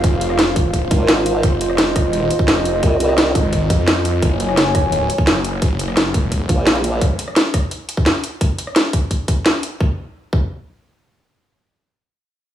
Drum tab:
HH |x-x-x-x-x-x-x-x-|x-x-x-x-x-x-x-x-|x-x-x-x-x-x-x-x-|x-x-x-x-x-x-x-x-|
SD |---ro-------o---|---ro-r-----o---|---ro-------o---|---ro-r-----o---|
BD |o-----o-o-o-----|o-----o----o----|o-----o-o-o-----|o-----o----o----|

HH |x-x-x-x-x-x-x-x-|x-x-x-x-x-x-x-x-|x-x-x-x-x-x-x-x-|----------------|
SD |---ro-------o---|---ro-r-----o---|---ro-------o---|----------------|
BD |o-----o-o-o-----|o-----o----o----|o-----o-o-o-----|o-----o---------|

HH |----------------|
SD |----------------|
BD |----------------|